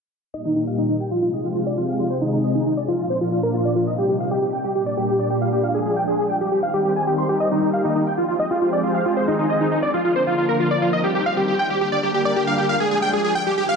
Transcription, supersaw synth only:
0.34 0.41 D#5 medium
0.45 0.52 D#4 medium
0.56 0.63 D#4 medium
0.67 0.74 F5 medium
0.78 0.85 D#4 medium
0.89 0.96 D#4 medium
1.00 1.07 G5 medium
1.11 1.18 F4 medium
1.22 1.29 F4 medium
1.33 1.40 D#5 medium
1.45 1.52 F4 medium
1.56 1.62 F4 medium
1.67 1.74 D5 medium
1.78 1.85 F4 medium
1.89 1.96 F5 medium
2.00 2.07 F4 medium
2.10 2.17 C5 medium
2.22 2.29 D#4 medium
2.33 2.40 D#4 medium
2.44 2.51 D#5 medium
2.55 2.62 D#4 medium
2.66 2.73 D#4 medium
2.77 2.84 D5 medium
2.88 2.95 F4 medium
2.99 3.06 F4 medium
3.10 3.17 C5 medium
3.21 3.28 F4 medium
3.32 3.39 F4 medium
3.43 3.50 A#4 medium
3.54 3.61 F4 medium
3.65 3.72 D5 medium
3.76 3.83 F4 medium
3.87 3.94 D#5 medium
3.98 4.05 G4 medium
4.09 4.16 G4 medium
4.20 4.27 F5 medium
4.31 4.38 G4 medium
4.42 4.49 G4 medium
4.53 4.60 G5 medium
4.64 4.71 G4 medium
4.75 4.82 G4 medium
4.86 4.93 D5 medium
4.97 5.04 G4 medium
5.09 5.15 G4 medium
5.19 5.26 D5 medium
5.30 5.37 G4 medium
5.42 5.48 F5 medium
5.52 5.59 G4 medium
5.63 5.71 F5 medium
5.74 5.82 G#4 medium
5.86 5.93 G#4 medium
5.96 6.04 G5 medium
6.08 6.15 G#4 medium
6.19 6.26 G#4 medium
6.30 6.37 G5 medium
6.41 6.48 G4 medium
6.52 6.59 G4 medium
6.63 6.70 F5 medium
6.74 6.81 G4 medium
6.85 6.92 G4 medium
6.96 7.03 G#5 medium
7.07 7.14 G4 medium
7.18 7.25 C6 medium
7.29 7.36 G4 medium
7.40 7.47 D#5 medium
7.51 7.58 D#4 medium
7.62 7.69 D#4 medium
7.73 7.80 F5 medium
7.85 7.91 D#4 medium
7.96 8.02 D#4 medium
8.07 8.13 G5 medium
8.17 8.24 F4 medium
8.28 8.35 F4 medium
8.40 8.46 D#5 medium
8.51 8.58 F4 medium
8.62 8.69 F4 medium
8.73 8.80 D5 medium
8.84 8.91 F4 medium
8.95 9.02 F5 medium
9.06 9.13 F4 medium
9.17 9.24 C5 medium
9.28 9.35 D#4 medium
9.39 9.46 D#4 medium
9.50 9.57 D#5 medium
9.61 9.68 D#4 medium
9.72 9.79 D#4 medium
9.83 9.90 D5 medium
9.94 10.01 F4 medium
10.05 10.12 F4 medium
10.16 10.23 C5 medium
10.27 10.34 F4 medium
10.38 10.45 F4 medium
10.49 10.56 A#4 medium
10.60 10.67 F4 medium
10.71 10.78 D5 medium
10.82 10.89 F4 medium
10.93 11.00 D#5 medium
11.04 11.11 G4 medium
11.15 11.22 G4 medium
11.26 11.33 F5 medium
11.37 11.44 G4 medium
11.48 11.55 G4 medium
11.59 11.66 G5 medium
11.70 11.77 G4 medium
11.81 11.88 G4 medium
11.92 11.99 D5 medium
12.03 12.10 G4 medium
12.14 12.21 G4 medium
12.25 12.32 D5 medium
12.36 12.43 G4 medium
12.47 12.54 F5 medium
12.58 12.65 G4 medium
12.69 12.76 F5 medium
12.80 12.87 G#4 medium
12.91 12.98 G#4 medium
13.02 13.09 G5 medium
13.13 13.20 G#4 medium
13.24 13.31 G#4 medium
13.35 13.42 G5 medium
13.47 13.54 G4 medium
13.58 13.65 G4 medium
13.69 13.76 F5 medium

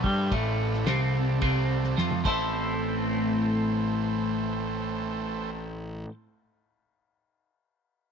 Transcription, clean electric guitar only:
0.04 0.31 G3 medium
0.32 0.86 A2 loud
0.87 1.41 C3 loud
1.42 1.97 C3 loud
1.97 2.23 F3 loud
2.24 6.07 A2 medium
2.24 6.09 A3 medium
2.24 6.09 C4 medium
2.24 6.10 E4 loud
2.24 6.11 A4 loud

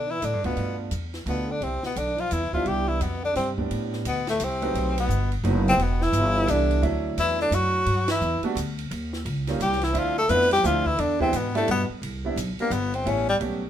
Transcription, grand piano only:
0.44 0.89 A3 medium
0.44 0.89 B3 soft
0.44 0.89 D4 medium
0.44 0.90 F4 medium
1.28 1.47 A3 medium
1.28 1.47 B3 soft
1.28 1.47 D4 soft
1.28 1.47 F4 medium
2.54 2.99 G3 medium
2.54 2.99 B3 soft
2.54 2.99 D4 medium
2.54 2.99 E4 medium
3.57 4.03 A2 soft
3.57 4.03 G3 soft
3.57 4.03 B3 soft
3.57 4.03 C4 soft
3.57 4.03 D4 medium
4.62 5.07 F#3 medium
4.62 5.07 A3 medium
4.62 5.07 C4 medium
4.62 5.07 D#4 medium
4.62 5.07 B4 medium
5.44 5.79 F#3 medium
5.44 5.79 A3 medium
5.44 5.79 B3 medium
5.44 5.79 C4 medium
5.44 5.79 D#4 medium
6.48 6.83 E3 soft
6.48 6.83 G3 soft
6.48 6.83 B3 soft
6.48 6.81 D4 soft
6.48 6.81 E4 medium
6.82 7.79 F#3 medium
6.82 7.79 A3 medium
6.82 7.79 C4 medium
6.82 7.79 D4 medium
6.82 7.79 E4 medium
8.43 8.55 G3 medium
8.43 8.55 A3 medium
8.43 8.55 B3 medium
8.43 8.55 D4 medium
8.43 8.55 F#4 medium
9.48 9.59 G3 medium
9.48 9.59 A#3 medium
9.48 9.60 C#4 medium
9.48 9.60 D#4 medium
9.48 9.60 F4 medium
9.93 10.14 F3 medium
9.93 10.14 A3 medium
9.93 10.14 C4 medium
9.93 10.14 D4 medium
9.93 10.14 E4 medium
10.28 10.49 F3 medium
10.28 10.49 A3 medium
10.28 10.49 C4 medium
10.28 10.49 D4 medium
10.28 10.49 E4 medium
10.63 10.83 F3 medium
10.63 10.84 A3 medium
10.63 10.84 C4 medium
10.63 10.84 D4 medium
10.63 10.84 E4 medium
11.20 11.32 E3 medium
11.20 11.32 G#3 medium
11.20 11.32 B3 medium
11.20 11.32 D4 medium
11.20 11.32 E4 medium
11.55 11.67 G3 medium
11.55 11.67 A3 medium
11.55 11.66 B3 medium
11.55 11.67 D4 medium
11.55 11.67 E4 medium
12.24 12.36 G3 medium
12.24 12.36 B3 medium
12.24 12.36 C4 medium
12.24 12.36 D4 medium
12.24 12.37 E4 medium
12.60 12.71 G3 medium
12.60 12.71 B3 medium
12.60 12.71 C4 medium
12.60 12.71 D4 medium
12.60 12.72 G4 medium
13.05 13.26 G3 medium
13.05 13.26 A3 medium
13.05 13.26 B3 medium
13.05 13.26 C#4 medium
13.05 13.26 E4 medium
13.41 13.60 G3 medium
13.41 13.61 A3 medium
13.41 13.61 B3 medium
13.41 13.61 C#4 medium
13.41 13.61 G4 medium

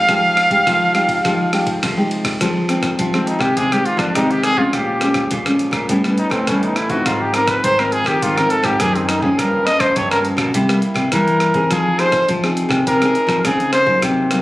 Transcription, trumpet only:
0.00 1.83 F5 loud
3.14 3.29 C4 medium
3.27 3.42 D#4 medium
3.40 3.58 G4 medium
3.57 3.74 G#4 medium
3.73 3.87 G4 medium
3.85 4.00 F4 medium
3.99 4.17 D4 medium
4.15 4.33 D#4 medium
4.31 4.45 G4 medium
4.44 4.60 G#4 loud
4.58 4.75 F4 medium
4.74 5.32 G4 medium
6.18 6.33 D#4 medium
6.31 6.50 C4 medium
6.48 6.65 C#4 medium
6.64 6.78 D#4 medium
6.76 6.92 E4 medium
6.90 7.07 F#4 medium
7.06 7.22 F4 medium
7.21 7.36 G4 medium
7.35 7.50 A#4 medium
7.49 7.66 B4 medium
7.64 7.81 C5 loud
7.80 7.94 A#4 medium
7.92 8.09 G#4 medium
8.07 8.24 G4 medium
8.23 8.39 F4 medium
8.37 8.52 A#4 medium
8.50 8.66 A4 medium
8.65 8.81 G4 medium
8.80 8.97 G#4 medium
8.96 9.09 C4 medium
9.08 9.23 D#4 medium
9.21 9.40 G#4 medium
9.38 9.67 A#4 medium
9.66 9.82 D#5 loud
9.80 9.98 C5 medium
9.96 10.10 C#5 medium
10.11 10.20 A#4 medium
11.12 11.73 A#4 medium
11.72 12.01 G#4 medium
11.99 12.28 C5 loud
12.87 13.47 A#4 medium
13.46 13.72 G#4 medium
13.73 14.00 C5 loud

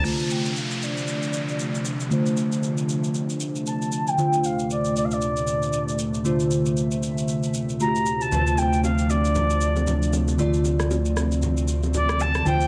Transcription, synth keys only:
0.03 2.07 D3 medium
0.03 2.07 A3 medium
0.03 2.08 F4 medium
0.03 2.08 C5 medium
2.10 4.14 D3 medium
2.10 4.14 A3 medium
2.10 4.14 F4 medium
2.10 4.15 C5 medium
4.17 6.21 D3 medium
4.17 6.21 A3 medium
4.17 6.21 F4 medium
4.17 6.22 C5 medium
6.24 7.77 D3 medium
6.24 7.77 A3 medium
6.24 7.77 F4 medium
6.24 7.78 C5 medium
7.80 8.30 D3 soft
7.80 8.31 A3 soft
7.80 8.31 F4 soft
7.80 7.88 F#4 soft
7.87 8.36 G4 medium
8.31 10.34 D3 medium
8.31 10.35 A3 medium
8.31 10.35 F4 medium
8.31 8.40 B4 medium
8.39 10.39 C5 medium
10.38 12.41 D3 medium
10.38 12.42 A3 medium
10.38 12.42 F4 medium
10.38 12.43 D5 medium
12.45 12.68 D3 medium
12.45 12.68 A3 medium
12.45 12.68 F4 medium
12.45 12.68 C5 medium

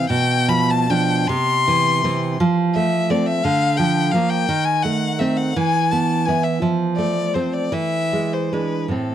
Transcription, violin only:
0.09 0.50 G5 loud
0.49 0.72 B5 loud
0.70 0.91 A5 loud
0.90 1.30 G5 loud
1.28 2.40 C6 loud
2.75 3.12 E5 loud
3.10 3.28 D5 medium
3.26 3.45 E5 loud
3.44 3.78 F5 loud
3.77 4.13 G5 loud
4.11 4.31 F5 medium
4.29 4.66 G5 loud
4.64 4.84 G#5 loud
4.82 5.20 F#5 loud
5.19 5.38 E5 medium
5.37 5.58 F#5 medium
5.56 5.93 G#5 loud
5.91 6.27 A5 loud
6.25 6.45 G#5 medium
6.43 6.62 E5 medium
6.97 7.35 D5 medium
7.34 7.55 C5 medium
7.53 7.74 D5 medium
7.72 8.35 E5 medium
8.33 8.54 C5 medium
8.53 8.92 B4 medium
8.93 9.15 A4 medium

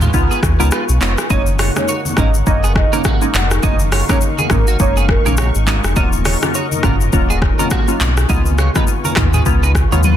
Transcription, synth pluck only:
0.14 0.56 G#3 medium
0.14 0.56 B3 medium
0.14 0.56 D#4 medium
0.14 0.56 F4 loud
0.59 0.98 G#3 medium
0.59 0.98 B3 medium
0.59 0.98 D#4 medium
0.59 0.98 F4 medium
1.01 1.28 G#3 medium
1.01 1.28 B3 medium
1.01 1.28 D#4 medium
1.01 1.29 F4 medium
1.30 1.72 G#3 loud
1.30 1.72 A#3 medium
1.30 1.72 C#4 medium
1.30 1.72 D#4 loud
1.76 1.93 G#3 medium
1.76 1.93 A#3 medium
1.76 1.93 C#4 medium
1.76 1.93 D#4 medium
2.17 2.38 G#3 medium
2.17 2.38 A#3 medium
2.17 2.38 C#4 medium
2.17 2.38 D#4 medium
2.47 2.89 G#3 loud
2.47 2.89 A#3 medium
2.47 2.89 C#4 medium
2.47 2.89 D#4 loud
2.92 3.10 G#3 medium
2.92 3.10 A#3 medium
2.92 3.10 C#4 medium
2.92 3.10 D#4 medium
3.22 3.39 G#3 medium
3.22 3.39 A#3 medium
3.22 3.39 C#4 medium
3.22 3.39 D#4 medium
3.63 4.05 G#3 loud
3.63 4.05 A#3 medium
3.63 4.05 C#4 medium
3.63 4.05 D#4 loud
4.09 4.26 G#3 medium
4.09 4.26 A#3 medium
4.09 4.26 C#4 medium
4.09 4.26 D#4 medium
4.50 4.71 G#3 medium
4.50 4.71 A#3 medium
4.50 4.71 C#4 medium
4.50 4.71 D#4 medium
4.80 5.22 G#3 medium
4.80 5.22 A#3 medium
4.80 5.22 C#4 medium
4.80 5.22 D#4 loud
5.25 5.64 G#3 medium
5.25 5.64 A#3 medium
5.25 5.64 C#4 medium
5.25 5.64 D#4 medium
5.67 5.94 G#3 medium
5.67 5.94 A#3 medium
5.67 5.94 C#4 medium
5.67 5.95 D#4 medium
5.96 6.38 F#3 medium
5.96 6.38 A#3 medium
5.96 6.38 C#4 medium
5.96 6.38 F4 loud
6.42 6.59 F#3 medium
6.42 6.59 A#3 medium
6.42 6.59 C#4 medium
6.42 6.59 F4 medium
6.83 7.04 F#3 medium
6.83 7.04 A#3 medium
6.83 7.04 C#4 medium
6.83 7.04 F4 medium
7.13 7.55 F#3 loud
7.13 7.55 A#3 medium
7.13 7.55 C#4 medium
7.13 7.55 F4 loud
7.59 7.76 F#3 medium
7.59 7.76 A#3 medium
7.59 7.76 C#4 medium
7.59 7.76 F4 medium
7.88 8.05 F#3 medium
7.88 8.05 A#3 medium
7.88 8.05 C#4 medium
7.88 8.05 F4 medium
8.29 8.71 G#3 loud
8.29 8.71 B3 medium
8.29 8.71 D#4 medium
8.29 8.72 F4 loud
8.75 8.92 G#3 medium
8.75 8.92 B3 medium
8.75 8.92 D#4 medium
8.75 8.93 F4 medium
9.16 9.37 G#3 medium
9.16 9.37 B3 medium
9.16 9.37 D#4 medium
9.16 9.37 F4 medium
9.46 9.88 G#3 loud
9.46 9.88 B3 medium
9.46 9.88 D#4 medium
9.46 9.88 F4 loud
9.92 10.17 G#3 medium
9.92 10.17 B3 medium
9.92 10.17 D#4 medium
9.92 10.17 F4 medium

